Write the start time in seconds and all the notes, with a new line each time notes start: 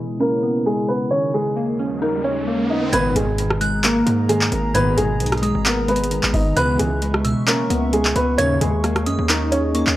Already playing: B2 C#3 E3 G#3 E4 G#4
0.20 A#3 C#4 A#4
0.43 B3
0.66 G#3 G#4
0.88 B3 B4
1.11 D#2 D#3 G#3 C#4 C#5, riser
1.34 G#3 G#4
1.56 A#3
1.79 C#4
2.02 A#3 D#4 A#4
2.24 C#4 C#5
2.47 A#3
2.70 D#4 D#5
2.92 G#1 B1 G#2 A#2 D#3 B3 G#4 B4 A#5 G#6, closed hi-hat
3.16 G#1 B2 G#3 G#4, closed hi-hat
3.38 D#3, closed hi-hat
3.50 cross-stick
3.61 G#3 F#6, closed hi-hat
3.84 A#3 A#4, clap, closed hi-hat
4.06 G#2 G#3, closed hi-hat
4.29 D#3 G#3 G#4, closed hi-hat
4.41 clap
4.52 G#1 A#3 A#4, closed hi-hat
4.74 G#1 B1 G#2 A#2 D#3 B3 B4 G#6, closed hi-hat
4.97 G#1 B2 G#3 G#4, closed hi-hat
5.20 B1 D#3, closed hi-hat
5.26 closed hi-hat
5.32 cross-stick, closed hi-hat
5.38 closed hi-hat
5.42 G#3 D#6, closed hi-hat
5.55 G#1
5.66 A#3 B3 A#4, clap, closed hi-hat
5.88 G#3 B3 B4, closed hi-hat
5.96 closed hi-hat
6.04 closed hi-hat
6.11 D#3, closed hi-hat
6.23 G#1, clap
6.33 D#4 D#5, kick, open hi-hat
6.56 C#2 B2 C#3 E3 B3 B4 E5 C#6 F#6, closed hi-hat
6.79 C#2 E3 G#3 G#4, closed hi-hat
7.02 G#3, closed hi-hat
7.14 cross-stick
7.24 B2 E6, closed hi-hat
7.47 A#3 C#4 A#4, clap, closed hi-hat
7.70 C#2 B3, closed hi-hat
7.93 G#3 G#4, closed hi-hat
8.05 clap
8.16 C#2 B3 B4, closed hi-hat
8.38 A#1 D#2 G#2 C#3 D#3 C#4 G#4 C#5 D#5 G#6, closed hi-hat
8.61 D#2 G#3 G#4, closed hi-hat
8.84 A#3, cross-stick, closed hi-hat
8.96 cross-stick, closed hi-hat
9.06 F#2 C#4 D#6, closed hi-hat
9.19 D#2
9.29 A#3 D#4 A#4, clap, closed hi-hat
9.52 C#4 C#5, closed hi-hat
9.75 A#3 C#6, closed hi-hat
9.87 D#2, clap